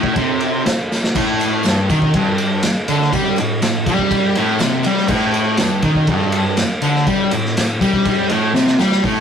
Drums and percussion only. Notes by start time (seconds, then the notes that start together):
0.03 kick
0.16 kick, ride, tambourine
0.40 ride, tambourine
0.66 snare, ride, tambourine
0.92 snare, tambourine
1.04 snare
1.15 kick, crash, tambourine
1.40 ride, tambourine
1.63 snare, ride, tambourine
1.89 kick, ride, tambourine
2.02 kick
2.14 kick, ride
2.38 ride, tambourine
2.62 snare, ride, tambourine
2.88 ride, tambourine
3.02 snare
3.13 kick, ride, tambourine
3.36 ride, tambourine
3.62 snare, ride, tambourine
3.86 kick, ride, tambourine
3.99 kick
4.11 kick, ride
4.35 ride, tambourine
4.59 snare, ride, tambourine
4.83 ride, tambourine
4.98 snare
5.07 kick, tambourine, crash
5.34 ride, tambourine
5.57 snare, ride, tambourine
5.82 kick, ride
5.95 kick
6.07 kick, ride
6.32 ride, tambourine
6.57 snare, ride, tambourine
6.82 ride, tambourine
6.96 snare
7.07 kick, ride, tambourine
7.31 ride, tambourine
7.45 snare
7.57 snare, ride, tambourine
7.81 kick, ride, tambourine
7.93 kick
8.05 kick, ride, tambourine
8.29 ride, tambourine
8.55 snare, tambourine
8.67 snare
8.79 snare, tambourine
8.91 snare
9.03 kick, open hi-hat